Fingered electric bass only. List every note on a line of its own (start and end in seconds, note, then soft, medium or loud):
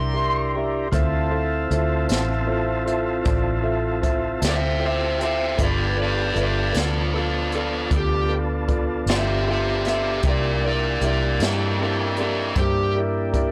0.00 0.88 C2 medium
0.92 1.66 D2 medium
1.71 2.06 D2 medium
2.10 3.22 A1 medium
3.26 4.38 A1 medium
4.42 5.54 D2 medium
5.59 6.32 G1 medium
6.36 6.71 G1 medium
6.75 7.88 D2 medium
7.91 9.04 D2 medium
9.06 10.20 G1 medium
10.24 10.98 C2 medium
11.01 11.37 C2 medium
11.40 12.53 G2 medium
12.56 13.52 G2 medium